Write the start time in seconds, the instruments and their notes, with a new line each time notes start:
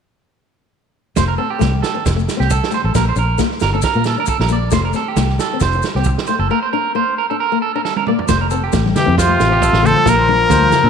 1.16 fingered electric bass F1, nylon-string guitar A3, clean electric guitar C5, kick, snare, maracas
1.28 clean electric guitar A#4
1.38 nylon-string guitar C4, clean electric guitar A4
1.50 clean electric guitar G4
1.59 fingered electric bass C2, nylon-string guitar A3, kick, snare, maracas
1.82 clean electric guitar A4, snare, maracas
1.95 muted nylon-string guitar stroke
2.06 fingered electric bass F1, muted clean electric guitar stroke, kick, snare, maracas
2.16 nylon-string guitar A3, maracas
2.28 snare, maracas
2.37 fingered electric bass C2, nylon-string guitar C4, clean electric guitar G4, snare
2.50 clean electric guitar A4, kick, maracas
2.64 snare
2.71 nylon-string guitar A3, clean electric guitar C5, snare, maracas
2.84 fingered electric bass A1, clean electric guitar A4
2.95 fingered electric bass A#1, nylon-string guitar A#3, clean electric guitar A#4, kick, snare, maracas
3.09 clean electric guitar C5
3.16 fingered electric bass A#1, nylon-string guitar D4, clean electric guitar A#4, maracas
3.38 nylon-string guitar A#3, kick, snare, maracas
3.51 snare
3.60 fingered electric bass G1, clean electric guitar A#4, snare, maracas
3.74 clean electric guitar A4, muted nylon-string guitar stroke
3.82 clean electric guitar A#4, kick, snare, maracas
3.94 fingered electric bass A#2, nylon-string guitar A#3, maracas
4.04 clean electric guitar A4, snare, maracas
4.18 nylon-string guitar D4, clean electric guitar A#4
4.26 clean electric guitar A4, kick, maracas
4.39 fingered electric bass A#1, clean electric guitar A#4, snare
4.49 nylon-string guitar A#3, clean electric guitar D5, maracas
4.71 fingered electric bass F1, nylon-string guitar A3, clean electric guitar C5, kick, snare, maracas
4.85 clean electric guitar A#4
4.93 nylon-string guitar C4, clean electric guitar A4, snare, maracas
5.08 clean electric guitar G4
5.16 fingered electric bass C2, nylon-string guitar A3, kick, snare, maracas
5.29 snare
5.39 clean electric guitar A4, snare, maracas
5.53 nylon-string guitar C4
5.60 fingered electric bass F1, clean electric guitar C5, kick, snare, maracas
5.72 nylon-string guitar F3, maracas
5.82 snare, maracas
5.95 fingered electric bass C2, nylon-string guitar C4, clean electric guitar G4, snare
6.04 muted clean electric guitar stroke, kick, maracas
6.18 snare
6.27 nylon-string guitar A3, clean electric guitar C5, maracas
6.39 fingered electric bass F#1, clean electric guitar A4
6.51 nylon-string guitar A#3, clean electric guitar A#4
6.63 clean electric guitar C5
6.73 nylon-string guitar D4, clean electric guitar A#4
6.95 nylon-string guitar A#3, clean electric guitar C5
7.18 clean electric guitar A#4
7.30 nylon-string guitar D4, clean electric guitar A4
7.40 clean electric guitar A#4
7.52 nylon-string guitar A#3
7.62 clean electric guitar A4
7.76 nylon-string guitar D4, clean electric guitar A#4
7.85 clean electric guitar A4, snare
7.96 clean electric guitar A#4, high tom
8.07 nylon-string guitar A#3, clean electric guitar D5, mid tom
8.19 floor tom
8.28 fingered electric bass F1, nylon-string guitar A3, clean electric guitar C5, kick, snare, maracas
8.41 clean electric guitar A#4
8.51 nylon-string guitar C4, clean electric guitar A4, maracas
8.64 clean electric guitar G4
8.72 fingered electric bass A1, nylon-string guitar A3, kick, snare, maracas
8.86 snare, high conga
8.96 trombone E3, trumpet G4, snare, low conga, maracas
9.06 fingered electric bass F2, nylon-string guitar C4
9.18 trombone C3, trumpet F4, clean electric guitar C5, kick, snare, maracas
9.27 nylon-string guitar A3
9.40 fingered electric bass A1, snare, maracas
9.49 nylon-string guitar C4, clean electric guitar G4
9.62 clean electric guitar A4, kick, maracas
9.73 fingered electric bass A1, snare
9.83 nylon-string guitar A3, trumpet A4, clean electric guitar C5, low conga, maracas
9.88 trombone F3
9.96 clean electric guitar A4, high conga
10.06 fingered electric bass A#1, nylon-string guitar A#3, clean electric guitar A#4, trumpet A#4, kick, snare, maracas
10.12 trombone F3
10.19 clean electric guitar C5
10.29 nylon-string guitar D4, clean electric guitar A#4, high conga
10.50 fingered electric bass D2, nylon-string guitar A#3, clean electric guitar C5, kick, snare, maracas
10.62 high conga
10.71 clean electric guitar A#4, snare, low conga, maracas
10.84 fingered electric bass A#2, nylon-string guitar D4, clean electric guitar A4